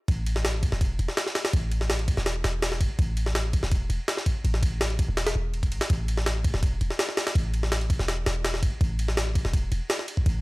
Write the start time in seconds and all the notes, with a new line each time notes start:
0.08 A1, kick, ride
0.26 ride
0.36 snare
0.45 snare, ride
0.63 kick, ride
0.72 E1, snare
0.81 kick, ride
0.99 E1, ride
1.08 snare
1.17 snare, ride
1.27 snare
1.35 snare, ride
1.45 snare, ride
1.53 A1, kick, ride
1.72 ride
1.81 snare
1.90 snare, ride
1.99 ride
2.08 kick, ride
2.17 E1, snare
2.26 snare, ride
2.44 E1, snare, ride
2.62 snare, ride
2.72 snare
2.81 A1, kick, ride
2.99 A1, kick, ride
3.17 ride
3.26 snare
3.35 snare, ride
3.53 kick, ride
3.63 E1, snare
3.72 kick, ride
3.90 E1, ride
4.08 snare, ride
4.17 snare
4.26 kick, ride
4.44 A1, ride
4.54 snare
4.63 kick, ride
4.81 snare, ride
4.90 ride
4.99 kick, ride
5.08 E1
5.17 snare, ride
5.27 snare, ride
5.35 E1
5.54 ride
5.63 kick, ride
5.72 A1, ride
5.81 snare, ride
5.90 A1, kick, ride
6.08 ride
6.17 snare
6.26 snare, ride
6.44 kick, ride
6.54 E1, snare
6.63 kick, ride
6.81 E1, ride
6.91 snare
6.99 snare, ride
7.09 snare
7.17 snare, ride
7.27 snare, ride
7.35 A1, kick, ride
7.54 ride
7.63 snare
7.72 snare, ride
7.81 ride
7.90 kick, ride
7.99 E1, snare
8.08 snare, ride
8.26 E1, snare, ride
8.45 snare, ride
8.54 snare
8.63 A1, kick, ride
8.81 A1, kick, ride
8.99 ride
9.08 snare
9.17 snare, ride
9.35 kick, ride
9.45 E1, snare
9.53 kick, ride
9.72 E1, ride
9.90 snare, ride
9.99 snare
10.08 ride
10.17 kick
10.26 A1, kick, ride